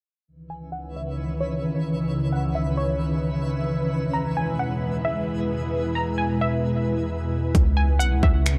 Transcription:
0.28 3.88 C#2 medium
0.28 3.88 C#3 medium
0.28 3.88 D#3 medium
0.28 3.88 E3 medium
0.28 3.88 C#4 medium
0.28 3.88 B4 medium
0.28 7.51 B4 medium
0.28 7.51 E5 medium
0.50 0.72 G#5 medium
0.72 0.94 F#5 loud
0.96 1.39 E5 medium
1.40 1.62 C#5 medium
2.32 2.54 F#5 medium
2.55 2.77 E5 medium
2.77 2.99 C#5 medium
3.91 7.51 E2 medium
3.91 7.51 B2 medium
3.91 7.51 G#3 medium
3.91 7.51 B3 medium
3.91 7.51 E4 medium
3.91 7.51 G#4 medium
4.13 4.35 A#5 medium
4.37 4.58 G#5 medium
4.59 5.02 F#5 medium
5.05 5.26 E5 medium
5.95 6.17 A#5 medium
6.18 6.40 G#5 medium
6.41 6.63 E5 medium
7.55 8.02 C#2 loud
7.55 8.58 C#3 medium
7.55 8.58 G#3 medium
7.55 8.58 B3 medium
7.55 8.58 C#4 medium
7.55 8.58 E4 medium
7.55 kick loud
7.55 closed hi-hat medium
7.77 7.99 G#5 medium
7.99 8.13 B1 loud
7.99 8.21 F#5 loud
7.99 closed hi-hat medium
8.12 8.22 C#2 loud
8.23 8.58 C#2 loud
8.23 8.58 E5 medium
8.23 kick loud
8.46 finger snap loud
8.46 closed hi-hat medium

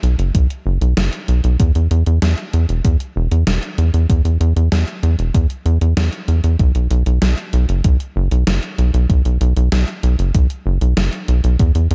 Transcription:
0.03 0.16 B1 medium
0.03 closed hi-hat medium
0.19 0.31 F#1 medium
0.19 closed hi-hat soft
0.35 0.47 B1 loud
0.35 kick loud
0.35 closed hi-hat loud
0.50 closed hi-hat soft
0.66 0.78 F#1 medium
0.81 0.94 B1 medium
0.81 closed hi-hat soft
0.97 1.10 F#1 loud
0.97 snare loud
0.97 closed hi-hat loud
1.13 closed hi-hat soft
1.28 1.41 B1 medium
1.28 closed hi-hat medium
1.44 1.57 B1 medium
1.44 closed hi-hat soft
1.60 1.72 E2 loud
1.60 kick loud
1.60 closed hi-hat medium
1.75 1.88 E2 medium
1.75 closed hi-hat soft
1.91 2.03 E2 medium
1.91 closed hi-hat medium
2.06 2.19 E2 medium
2.06 closed hi-hat soft
2.22 2.35 E2 loud
2.22 snare loud
2.22 closed hi-hat medium
2.38 closed hi-hat soft
2.53 2.66 E2 loud
2.53 closed hi-hat medium
2.69 2.82 E1 medium
2.69 closed hi-hat soft
2.85 2.97 E2 loud
2.85 kick loud
2.85 closed hi-hat medium
3.00 closed hi-hat soft
3.16 3.29 E1 loud
3.31 3.44 E2 medium
3.31 closed hi-hat soft
3.47 3.60 E1 loud
3.47 snare loud
3.47 closed hi-hat loud
3.63 closed hi-hat soft
3.78 3.91 E2 medium
3.78 closed hi-hat medium
3.94 4.07 E2 medium
3.94 closed hi-hat soft
4.10 4.22 E2 loud
4.10 kick loud
4.10 closed hi-hat medium
4.25 4.38 E2 medium
4.25 closed hi-hat soft
4.40 4.53 E2 loud
4.40 closed hi-hat medium
4.56 4.69 E2 medium
4.56 closed hi-hat soft
4.72 4.85 E2 loud
4.72 snare loud
4.72 closed hi-hat medium
4.88 closed hi-hat soft
5.03 5.16 E2 loud
5.03 closed hi-hat medium
5.19 5.31 E1 medium
5.19 closed hi-hat soft
5.34 5.47 E2 loud
5.34 kick loud
5.34 closed hi-hat medium
5.50 closed hi-hat soft
5.66 5.78 E2 loud
5.66 closed hi-hat soft
5.81 5.94 E2 medium
5.81 closed hi-hat soft
5.97 6.10 E2 loud
5.97 snare loud
5.97 closed hi-hat medium
6.13 closed hi-hat soft
6.28 6.41 E2 medium
6.28 closed hi-hat medium
6.44 6.56 E2 medium
6.44 closed hi-hat soft
6.59 6.72 B1 loud
6.59 kick loud
6.59 closed hi-hat medium
6.75 6.88 B1 medium
6.75 closed hi-hat soft
6.91 7.03 B1 loud
6.91 closed hi-hat medium
7.06 7.19 B1 medium
7.06 closed hi-hat soft
7.22 7.35 B1 loud
7.22 snare loud
7.22 closed hi-hat medium
7.37 closed hi-hat soft
7.53 7.66 B1 loud
7.53 closed hi-hat medium
7.69 7.81 F#1 medium
7.69 closed hi-hat soft
7.84 7.97 B1 loud
7.84 kick loud
7.84 closed hi-hat medium
8.00 closed hi-hat soft
8.16 8.28 F#1 loud
8.31 8.44 B1 medium
8.31 closed hi-hat soft
8.47 8.60 F#1 loud
8.47 snare loud
8.47 closed hi-hat medium
8.63 closed hi-hat soft
8.78 8.91 B1 medium
8.78 closed hi-hat medium
8.94 9.06 B1 medium
8.94 closed hi-hat soft
9.10 9.22 B1 loud
9.10 kick loud
9.10 closed hi-hat medium
9.25 9.38 B1 medium
9.25 closed hi-hat soft
9.41 9.53 B1 loud
9.41 closed hi-hat medium
9.57 9.69 B1 medium
9.57 closed hi-hat soft
9.72 9.85 B1 loud
9.72 snare loud
9.72 closed hi-hat medium
9.88 closed hi-hat soft
10.03 10.16 B1 loud
10.03 closed hi-hat medium
10.19 10.32 F#1 medium
10.19 closed hi-hat soft
10.35 10.47 B1 loud
10.35 kick loud
10.35 closed hi-hat medium
10.50 closed hi-hat soft
10.66 10.78 F#1 loud
10.81 10.94 B1 medium
10.81 closed hi-hat soft
10.97 11.10 F#1 loud
10.97 snare loud
10.97 closed hi-hat medium
11.13 closed hi-hat soft
11.28 11.41 B1 medium
11.28 closed hi-hat medium
11.44 11.57 B1 medium
11.44 closed hi-hat soft
11.59 11.72 E2 loud
11.59 kick loud
11.59 closed hi-hat medium
11.75 11.88 E2 medium
11.75 closed hi-hat soft
11.91 11.95 E2 loud
11.91 closed hi-hat medium

